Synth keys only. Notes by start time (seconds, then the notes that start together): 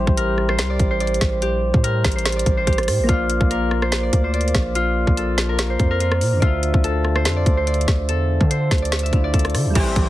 Already playing: G3 E4 G4 C5
3.04 A#3 F4
3.10 D5 F5
6.37 D3 D4
6.44 F4 E5
9.10 D3 D4 E4
9.15 F4
9.70 G3 E4
9.77 G4 C5